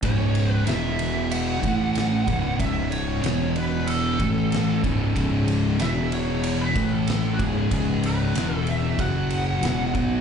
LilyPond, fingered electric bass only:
\new Staff \with { instrumentName = "Fingered electric bass" } { \clef bass \time 4/4 \key cis \minor \tempo 4 = 94 cis,,4 e,,4. a,,4 cis,,8 | cis,,4 e,,4. a,,4 cis,,8 | cis,,4 e,,4. a,,4 cis,,8 | cis,,4 e,,4 fis,,4 e,,8 b,,8 | }